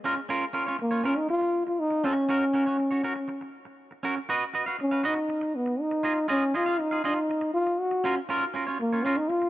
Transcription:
0.04 0.19 C#4 medium
0.04 0.16 F4 medium
0.04 0.16 A#4 loud
0.17 muted clean electric guitar stroke soft
0.29 0.44 C#4 medium
0.29 0.44 F4 medium
0.29 0.44 A#4 medium
0.53 0.65 C#4 medium
0.53 0.66 F4 medium
0.53 0.66 A#4 medium
0.66 0.78 C#4 medium
0.66 0.78 F4 medium
0.66 0.78 C#5 medium
0.79 1.07 A#3 medium
0.79 muted clean electric guitar stroke soft
0.91 1.02 C#4 soft
0.91 1.03 F4 medium
0.91 1.03 C#5 medium
1.03 1.18 C#4 medium
1.03 1.19 C#4 medium
1.03 1.16 F4 medium
1.03 1.15 A#4 loud
1.16 1.29 D#4 medium
1.16 muted clean electric guitar stroke soft
1.29 1.65 F4 loud
1.29 muted clean electric guitar stroke soft
1.41 muted clean electric guitar stroke soft
1.67 1.81 F4 medium
1.67 muted clean electric guitar stroke soft
1.80 2.06 D#4 loud
1.91 muted clean electric guitar stroke medium
2.04 2.24 C#4 medium
2.04 3.54 C#4 medium
2.04 2.16 F#4 medium
2.04 2.15 A#4 medium
2.16 muted clean electric guitar stroke soft
2.29 2.43 C#4 medium
2.29 2.44 F#4 medium
2.29 2.44 A#4 loud
2.54 2.65 C#4 medium
2.54 2.66 F#4 medium
2.54 2.66 A#4 medium
2.66 2.78 C#4 soft
2.66 2.78 F#4 medium
2.66 2.78 C#5 medium
2.79 muted clean electric guitar stroke soft
2.91 3.02 C#4 soft
2.91 3.03 F#4 medium
2.91 3.02 C#5 medium
3.04 3.18 C#4 medium
3.04 3.15 F#4 medium
3.04 3.14 A#4 medium
3.16 muted clean electric guitar stroke soft
3.28 muted clean electric guitar stroke medium
3.41 muted clean electric guitar stroke soft
3.65 muted clean electric guitar stroke soft
3.91 muted clean electric guitar stroke soft
4.03 4.18 C#4 medium
4.03 4.17 F#4 medium
4.03 4.16 A#4 medium
4.17 muted clean electric guitar stroke soft
4.29 4.43 F#4 medium
4.29 4.44 B4 medium
4.29 4.44 D#5 medium
4.54 4.65 F#4 medium
4.54 4.66 B4 medium
4.54 4.66 D#5 medium
4.66 4.77 F#4 soft
4.66 4.78 B4 medium
4.66 4.78 F5 medium
4.79 5.08 C#4 medium
4.79 muted clean electric guitar stroke soft
4.91 5.02 F#4 soft
4.91 5.03 B4 soft
4.91 5.03 F5 medium
5.03 5.57 D#4 medium
5.03 5.18 F#4 medium
5.03 5.16 B4 medium
5.03 5.15 D#5 loud
5.16 muted clean electric guitar stroke soft
5.29 muted clean electric guitar stroke soft
5.41 muted clean electric guitar stroke soft
5.56 5.82 B3 medium
5.66 muted clean electric guitar stroke soft
5.81 6.30 D#4 medium
5.91 muted clean electric guitar stroke soft
6.03 6.18 F4 medium
6.03 6.15 G#4 medium
6.03 6.14 D#5 medium
6.16 muted clean electric guitar stroke soft
6.28 6.57 C#4 loud
6.28 6.43 F4 medium
6.28 6.43 G#4 loud
6.28 6.44 D#5 medium
6.54 6.65 F4 medium
6.54 6.82 F4 medium
6.54 6.66 G#4 medium
6.54 6.66 D#5 medium
6.66 6.78 F4 medium
6.66 6.78 G#4 medium
6.66 6.78 F5 medium
6.79 7.05 D#4 medium
6.79 muted clean electric guitar stroke soft
6.91 7.03 F4 soft
6.91 7.03 G#4 medium
6.91 7.03 F5 medium
7.04 7.52 D#4 medium
7.04 7.18 F4 medium
7.04 7.16 G#4 medium
7.04 7.15 D#5 medium
7.16 muted clean electric guitar stroke soft
7.29 muted clean electric guitar stroke soft
7.41 muted clean electric guitar stroke medium
7.54 7.82 F4 loud
7.67 muted clean electric guitar stroke soft
7.80 8.17 F#4 medium
7.91 muted clean electric guitar stroke medium
8.04 8.18 C#4 medium
8.04 8.17 F4 medium
8.04 8.16 A#4 loud
8.17 muted clean electric guitar stroke soft
8.29 8.43 C#4 medium
8.29 8.44 F4 medium
8.29 8.44 A#4 loud
8.54 8.65 C#4 medium
8.54 8.66 F4 medium
8.54 8.66 A#4 medium
8.67 8.79 C#4 medium
8.67 8.79 F4 medium
8.67 8.78 C#5 medium
8.80 9.06 A#3 medium
8.80 muted clean electric guitar stroke soft
8.93 9.03 C#4 medium
8.93 9.04 F4 soft
8.93 9.03 C#5 medium
9.05 9.19 C#4 medium
9.05 9.18 F4 medium
9.05 9.17 A#4 medium
9.17 9.30 D#4 medium
9.17 muted clean electric guitar stroke soft
9.29 9.49 F4 loud
9.29 muted clean electric guitar stroke soft
9.42 muted clean electric guitar stroke soft

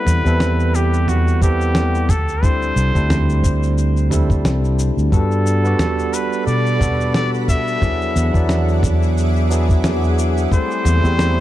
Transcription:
0.00 0.21 G3 medium
0.00 0.21 B3 medium
0.00 0.21 C4 medium
0.00 0.21 E4 medium
0.00 0.22 A4 loud
0.00 0.77 B4 loud
0.06 0.21 E2 medium
0.06 mid tom medium
0.06 shaker medium
0.24 2.09 E2 loud
0.24 1.37 G3 medium
0.24 1.38 C4 medium
0.24 1.39 E4 medium
0.24 1.39 A4 medium
0.24 1.38 B4 medium
0.24 shaker soft
0.40 snare loud
0.40 shaker medium
0.60 shaker soft
0.75 1.11 G4 medium
0.75 shaker medium
0.94 shaker soft
1.08 1.42 F#4 loud
1.08 mid tom medium
1.08 shaker soft
1.28 shaker soft
1.42 2.07 G3 medium
1.42 2.07 B3 medium
1.42 2.08 C4 medium
1.42 2.08 E4 medium
1.42 2.12 G4 loud
1.42 2.08 A4 medium
1.42 kick loud
1.42 shaker medium
1.61 shaker soft
1.75 snare loud
1.75 shaker soft
1.95 shaker soft
2.09 2.71 D2 medium
2.09 2.45 A4 medium
2.09 kick loud
2.09 mid tom medium
2.09 shaker medium
2.28 shaker soft
2.42 2.91 G3 medium
2.42 2.91 C4 medium
2.42 2.91 D4 medium
2.42 2.91 E4 medium
2.42 2.91 A4 medium
2.42 3.78 C5 loud
2.42 kick loud
2.42 shaker soft
2.62 shaker soft
2.76 2.90 C2 medium
2.76 shaker medium
2.95 4.44 D2 loud
2.95 4.07 G3 medium
2.95 4.08 C4 medium
2.95 4.08 D4 medium
2.95 4.08 E4 medium
2.95 4.09 C5 medium
2.95 kick medium
2.95 shaker soft
3.10 snare loud
3.10 mid tom medium
3.10 shaker soft
3.30 shaker soft
3.44 kick loud
3.44 shaker medium
3.63 shaker soft
3.78 shaker soft
3.97 shaker soft
4.10 5.08 G3 medium
4.10 5.09 C4 medium
4.10 5.09 D4 medium
4.10 5.10 E4 medium
4.10 5.10 A4 medium
4.10 mid tom medium
4.10 shaker medium
4.30 kick loud
4.30 shaker soft
4.45 4.90 C2 medium
4.45 snare loud
4.45 shaker soft
4.65 shaker soft
4.79 shaker medium
4.97 5.09 D2 medium
4.97 shaker soft
5.12 5.74 G2 loud
5.12 5.60 G3 medium
5.12 5.60 B3 medium
5.12 5.60 D4 medium
5.12 5.61 F#4 medium
5.12 7.79 A4 medium
5.12 6.16 A4 medium
5.12 5.61 A4 loud
5.12 10.48 F#5 medium
5.12 7.80 B5 medium
5.12 kick loud
5.12 shaker soft
5.31 shaker soft
5.47 shaker medium
5.64 6.77 G3 medium
5.64 6.77 B3 medium
5.64 6.77 D4 medium
5.64 6.78 F#4 medium
5.64 6.78 D5 loud
5.64 shaker soft
5.79 snare loud
5.79 mid tom medium
5.79 shaker soft
5.99 shaker soft
6.13 6.46 B4 medium
6.13 shaker medium
6.33 shaker soft
6.47 7.76 B2 medium
6.47 7.11 D5 loud
6.47 shaker soft
6.66 shaker soft
6.79 7.78 G3 medium
6.79 7.78 B3 medium
6.79 7.78 D4 medium
6.79 7.79 F#4 medium
6.79 7.79 A4 loud
6.79 kick loud
6.79 mid tom medium
6.79 shaker medium
7.01 shaker soft
7.14 7.30 D5 loud
7.14 snare medium
7.14 shaker soft
7.34 shaker soft
7.48 8.79 E5 loud
7.48 kick loud
7.48 shaker medium
7.68 shaker soft
7.81 8.30 F#3 medium
7.81 8.30 B3 medium
7.81 8.30 D4 medium
7.81 8.30 E4 medium
7.81 10.49 G#4 medium
7.81 8.31 G#4 medium
7.81 10.49 E5 medium
7.81 10.49 D6 loud
7.81 kick loud
7.81 mid tom medium
7.81 shaker soft
8.01 shaker soft
8.16 8.30 E2 medium
8.16 shaker medium
8.34 10.46 E2 loud
8.34 9.47 F#3 medium
8.34 9.47 B3 medium
8.34 9.47 D4 medium
8.34 9.48 E4 medium
8.34 9.48 D5 loud
8.34 kick medium
8.34 shaker soft
8.49 snare loud
8.49 shaker soft
8.68 shaker soft
8.83 kick medium
8.83 mid tom medium
8.83 shaker medium
9.02 shaker soft
9.17 shaker soft
9.36 shaker soft
9.49 10.48 F#3 medium
9.49 10.48 B3 medium
9.49 10.48 D4 medium
9.49 10.49 E4 medium
9.49 10.49 G#4 medium
9.49 shaker medium
9.69 kick loud
9.69 shaker soft
9.84 snare loud
9.84 mid tom medium
9.84 shaker soft
10.03 shaker soft
10.19 shaker medium
10.37 shaker soft
10.51 10.99 G3 medium
10.51 11.00 A3 medium
10.51 11.00 C4 medium
10.51 11.00 E4 medium
10.51 11.40 A4 medium
10.51 11.00 A4 medium
10.51 11.40 C5 loud
10.51 11.40 G5 medium
10.51 11.40 B5 medium
10.51 11.40 C6 medium
10.51 kick loud
10.51 shaker soft
10.71 shaker soft
10.85 11.00 E2 medium
10.85 mid tom medium
10.85 shaker medium
11.03 11.40 E2 loud
11.03 11.40 G3 medium
11.03 11.40 A3 medium
11.03 11.40 C4 medium
11.03 11.40 E4 medium
11.03 11.40 C5 medium
11.03 shaker soft
11.19 snare loud
11.19 shaker soft

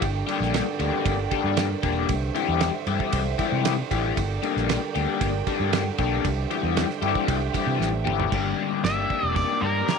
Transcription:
0.00 0.21 G1 loud
0.00 8.37 G2 medium
0.00 8.38 D3 medium
0.00 4.14 G4 medium
0.00 2.08 A#4 medium
0.00 2.07 D5 medium
0.00 4.14 G5 medium
0.00 kick loud
0.00 ride medium
0.27 0.62 G3 medium
0.27 0.62 A#3 medium
0.27 0.61 D4 medium
0.27 0.61 G4 loud
0.27 ride medium
0.40 0.60 A#1 medium
0.40 snare soft
0.54 snare medium
0.54 ride medium
0.79 0.89 D2 medium
0.79 1.14 G3 medium
0.79 1.14 A#3 medium
0.79 1.14 D4 medium
0.79 1.13 G4 medium
0.79 ride medium
1.06 1.25 G1 medium
1.06 kick loud
1.06 ride medium
1.31 1.66 G3 medium
1.31 1.66 A#3 medium
1.31 1.66 D4 medium
1.31 1.65 G4 medium
1.31 kick medium
1.31 ride medium
1.44 1.74 G2 medium
1.57 snare loud
1.57 ride medium
1.83 2.03 E1 medium
1.83 2.10 G3 medium
1.83 2.10 A#3 medium
1.83 2.10 D4 medium
1.83 2.09 G4 medium
1.83 kick loud
1.83 ride medium
2.09 2.29 C2 loud
2.09 4.15 C5 medium
2.09 4.16 E5 medium
2.09 kick loud
2.09 ride medium
2.35 2.69 E3 medium
2.35 2.69 G3 medium
2.35 2.69 E4 medium
2.35 2.69 G4 loud
2.35 ride medium
2.48 2.68 E2 loud
2.61 snare loud
2.61 ride medium
2.87 2.97 G2 medium
2.87 3.22 E3 medium
2.87 3.21 G3 medium
2.87 3.21 E4 medium
2.87 3.21 G4 medium
2.87 ride medium
3.00 kick medium
3.13 3.33 C2 loud
3.13 kick medium
3.13 ride loud
3.39 3.73 E3 medium
3.39 3.73 G3 medium
3.39 3.73 E4 medium
3.39 3.73 G4 medium
3.39 kick medium
3.39 ride medium
3.52 3.82 C3 medium
3.65 snare loud
3.65 ride loud
3.91 4.11 A1 medium
3.91 4.17 E3 medium
3.91 4.17 G3 medium
3.91 4.17 E4 medium
3.91 4.17 G4 medium
3.91 kick medium
3.91 ride medium
4.17 4.37 G1 medium
4.17 8.29 G4 medium
4.17 6.24 A#4 medium
4.17 6.24 D5 medium
4.17 6.23 G5 medium
4.17 kick loud
4.17 ride medium
4.43 4.77 G3 medium
4.43 4.77 A#3 medium
4.43 4.77 D4 medium
4.43 4.77 G4 loud
4.43 ride medium
4.57 4.76 A#1 medium
4.57 snare soft
4.69 snare loud
4.69 ride medium
4.95 5.05 D2 medium
4.95 5.30 G3 medium
4.95 5.29 A#3 medium
4.95 5.29 D4 medium
4.95 5.29 G4 medium
4.95 ride medium
5.21 5.40 G1 loud
5.21 kick loud
5.21 ride medium
5.47 5.81 G3 medium
5.47 5.81 A#3 medium
5.47 5.81 D4 medium
5.47 5.81 G4 medium
5.47 kick medium
5.47 ride medium
5.60 5.89 G2 medium
5.73 snare loud
5.73 ride medium
5.98 6.19 B1 medium
5.98 6.25 G3 medium
5.98 6.25 A#3 medium
5.98 6.25 D4 medium
5.98 6.25 G4 medium
5.98 kick medium
5.98 ride medium
6.24 6.44 C2 loud
6.24 8.31 C5 medium
6.24 8.31 E5 medium
6.24 8.31 G5 medium
6.24 kick loud
6.24 ride medium
6.51 6.85 E3 medium
6.51 6.85 G3 medium
6.51 6.85 E4 medium
6.51 6.84 G4 medium
6.51 ride medium
6.63 6.83 E2 medium
6.77 snare loud
6.77 ride medium
6.90 snare soft
7.02 7.12 G2 medium
7.02 7.37 E3 medium
7.02 7.37 G3 medium
7.02 7.36 E4 medium
7.02 7.36 G4 medium
7.02 ride medium
7.15 kick medium
7.28 7.48 C2 loud
7.28 kick medium
7.28 ride loud
7.54 7.89 E3 medium
7.54 7.89 G3 medium
7.54 7.88 E4 medium
7.54 7.88 G4 medium
7.54 kick medium
7.54 ride medium
7.67 7.77 C3 medium
7.79 8.03 A1 medium
7.79 snare medium
8.05 8.29 G1 medium
8.05 8.33 E3 medium
8.05 8.32 G3 medium
8.05 8.32 E4 medium
8.05 8.32 G4 medium
8.05 mid tom medium
8.20 floor tom medium
8.32 8.52 G1 medium
8.32 9.10 G2 medium
8.32 9.10 D3 medium
8.32 8.83 G3 medium
8.32 8.83 A#3 medium
8.32 8.85 D4 medium
8.32 9.99 G4 medium
8.32 8.86 G4 loud
8.32 9.99 A#4 medium
8.32 9.99 D5 medium
8.32 9.99 G5 medium
8.32 kick loud
8.32 crash medium
8.83 9.04 G1 medium
8.83 9.65 G3 medium
8.83 9.63 A#3 medium
8.83 9.62 D4 medium
8.83 9.62 G4 medium
8.83 9.36 E5 loud
8.83 snare loud
8.83 open hi-hat soft
9.10 kick medium
9.23 9.43 E1 loud
9.36 9.63 D5 medium
9.36 kick loud
9.36 open hi-hat soft
9.62 9.82 G2 loud
9.62 9.88 G3 medium
9.62 9.88 A#3 medium
9.62 9.89 D4 medium
9.62 9.90 G4 medium
9.62 9.99 A#4 medium
9.87 9.99 G2 medium
9.87 9.99 D3 medium
9.87 9.99 G3 medium
9.87 9.99 A#3 medium
9.87 9.99 D4 loud
9.87 9.99 G4 medium
9.87 snare loud
9.87 open hi-hat soft

